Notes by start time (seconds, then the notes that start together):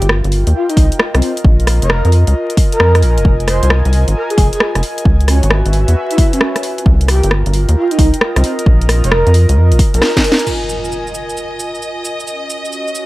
Already playing: F4 A#4
0.02 G1, closed hi-hat
0.09 cross-stick
0.17 G5
0.24 G1 D#5, closed hi-hat
0.32 open hi-hat
0.47 D#2, closed hi-hat
0.54 F4
0.69 D#4, closed hi-hat
0.77 C2, kick, open hi-hat
0.92 closed hi-hat
1.00 cross-stick
1.15 C2 C4, cross-stick, closed hi-hat
1.22 C4, open hi-hat
1.37 closed hi-hat
1.45 A#1, kick
1.60 closed hi-hat
1.67 cross-stick, open hi-hat
1.82 F1 C#5, closed hi-hat
1.90 A#4, cross-stick
2.05 F2, closed hi-hat
2.12 G#5, open hi-hat
2.27 C#2, closed hi-hat
2.50 closed hi-hat
2.57 kick, open hi-hat
2.72 A#4, closed hi-hat
2.80 F2, cross-stick
2.95 cross-stick, closed hi-hat
3.02 A#1, open hi-hat
3.18 F1, closed hi-hat
3.25 F1, kick
3.40 closed hi-hat
3.47 C5, cross-stick, open hi-hat
3.63 C2, closed hi-hat
3.70 cross-stick
3.85 C2, closed hi-hat
3.93 open hi-hat
4.08 G#1, closed hi-hat
4.15 A#4
4.30 G#4, closed hi-hat
4.38 F1, kick, open hi-hat
4.53 G#4, closed hi-hat
4.60 cross-stick
4.75 F1, cross-stick, closed hi-hat
4.83 open hi-hat
4.98 closed hi-hat
5.05 C#2 F#4, kick
5.21 closed hi-hat
5.27 C#4 E5, cross-stick, open hi-hat
5.35 B4
5.43 G#1, closed hi-hat
5.50 cross-stick
5.66 G#1, closed hi-hat
5.73 open hi-hat
5.88 E2, closed hi-hat
6.11 E4, closed hi-hat
6.18 kick, open hi-hat
6.33 C#4, closed hi-hat
6.41 cross-stick
6.56 cross-stick, closed hi-hat
6.63 F4, open hi-hat
6.72 A#4
6.78 closed hi-hat
6.86 C2, kick
7.01 closed hi-hat
7.08 G4, cross-stick, open hi-hat
7.23 G1, closed hi-hat
7.31 cross-stick
7.46 G1, closed hi-hat
7.53 D#5 G5, open hi-hat
7.69 D#2, closed hi-hat
7.76 F4
7.91 D#4, closed hi-hat
7.99 C2, kick, open hi-hat
8.14 closed hi-hat
8.21 cross-stick
8.36 C2 C4, cross-stick, closed hi-hat
8.44 C4, open hi-hat
8.59 closed hi-hat
8.66 A#1, kick
8.81 closed hi-hat
8.89 cross-stick, open hi-hat
9.04 F1 C#5, closed hi-hat
9.12 A#4, cross-stick
9.27 F2, closed hi-hat
9.34 open hi-hat
9.49 C#2 G#5, closed hi-hat
9.57 F2
9.72 A#1, closed hi-hat
9.79 kick, open hi-hat
9.94 A#1 A#4, closed hi-hat
10.02 cross-stick, snare
10.17 kick, snare, closed hi-hat
10.24 open hi-hat
10.32 snare
10.39 closed hi-hat
10.47 D#5, crash, impact, shaker
10.69 shaker
10.84 shaker
10.92 shaker
11.07 shaker
11.14 shaker
11.29 shaker
11.37 shaker
11.60 shaker
11.75 shaker
11.82 shaker
12.05 shaker
12.20 shaker
12.27 C#4, shaker
12.47 F#4, shaker
12.65 shaker
12.72 shaker
12.87 shaker
12.95 shaker
12.99 E4 B4